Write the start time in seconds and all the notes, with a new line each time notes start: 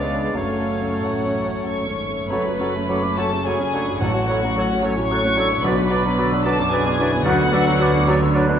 Already playing: C#2 C#3 G#3 B3 C#4 D4 B4 C#5 D5 F5
0.14 D4 B4
0.35 F#1 F#2 F#3 A3 C#4 A4 C#5 F5
0.58 A3
0.82 C#4
1.02 A1 A2 A4 F#5
1.25 C#4
1.45 C#5
1.66 G#1 G#2 A4 C#5 C#6
1.87 C#4
2.09 A3
2.30 F#1 F#2 F#3 A3 C#4 F#4 A4 B4 C#5 B5
2.45 A3 F#4 C#5
2.59 F#3 C#4 A4 C#5
2.74 A3 F#4
2.89 F#3 C#4 A4 C#5 D6
3.03 A3 C#4 F#4
3.17 F#3 A3 C#4 A4 C#5 A5 C#6
3.32 C#3 A3 F#4
3.45 F#3 C#4 G#4 A4 C#5 G#5 B5
3.59 A3 C#4 F#4
3.73 F#3 C#4 D4 A4 C#5
3.87 A3 F#4 C#5
4.00 A1 A2 F#3 A3 C#4 F#4 A4 C#5 F#5 A5
4.14 F#3 A3 C#5
4.28 F#3 A3 C#4 A4 C#5 B5
4.44 F#3 A3
4.56 F#3 A3 C#4 A4 C#5 C#6
4.72 F#3 A3 C#4
4.82 F#3 A3 C#4 A4 C#5
4.97 A2 F#3 A3
5.08 F#3 A3 C#4 A4 C#5 C#6 F#6
5.25 F#3 A3 C#4
5.37 F#3 A3 C#4 D4 A4 C#5 E6
5.51 F#3 A3 C#5
5.63 B1 B2 D3 F#3 B3 D4 B4 D5 B5 D6
5.67 D4 F#4
5.78 F#3 B3 B4
5.90 D3 F#3 D4 B4 D5 D6
6.06 F#3 B3
6.18 D3 F#3 D4 B4 D5 E6
6.32 F#3 B3 D4
6.44 D3 F#3 D4 A4 B4 D5 A5 D6
6.59 F#2 F#3 B3
6.71 D3 F#3 D4 G#4 B4 D5 G#5
6.86 F#3 B3 D4
6.98 D3 F#3 D4 E4 B4 D5
7.12 F#3 B3 B4
7.24 D2 D3 F#3 B3 D4 F#4 B4 D5 F#5 F#6
7.28 F#3 D4
7.39 B3 F#4 B4
7.52 F#3 D4 B4 D5 E6
7.67 F#3 B3 F#4
7.80 F#3 D4 B4 D5 D6
7.95 B3 D4 F#4
8.07 F#3 C#4 D4 B4 C#5 D5 E6
8.22 D3 B3 F#4
8.34 F#3 D4 B4 D5 F#6
8.49 B3 D4 F#4